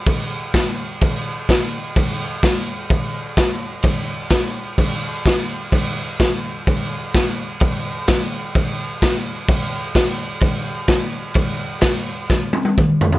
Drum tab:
CC |x---x---x---x---|x---x---x---x---|x---x---x---x---|x---x---x---x---|
SD |----o-------o---|----o-------o---|----o-------o---|----o-------o---|
T1 |----------------|----------------|----------------|----------------|
T2 |----------------|----------------|----------------|----------------|
FT |----------------|----------------|----------------|----------------|
BD |o---o---o---o---|o---o---o---o---|o---o---o---o---|o---o---o---o---|

CC |x---x---x---x---|x---x---x---x---|x---x-----------|
SD |----o-------o---|----o-------o---|----o---o-------|
T1 |----------------|----------------|----------oo----|
T2 |----------------|----------------|------------o---|
FT |----------------|----------------|--------------oo|
BD |o---o---o---o---|o---o---o---o---|o---o---o---o---|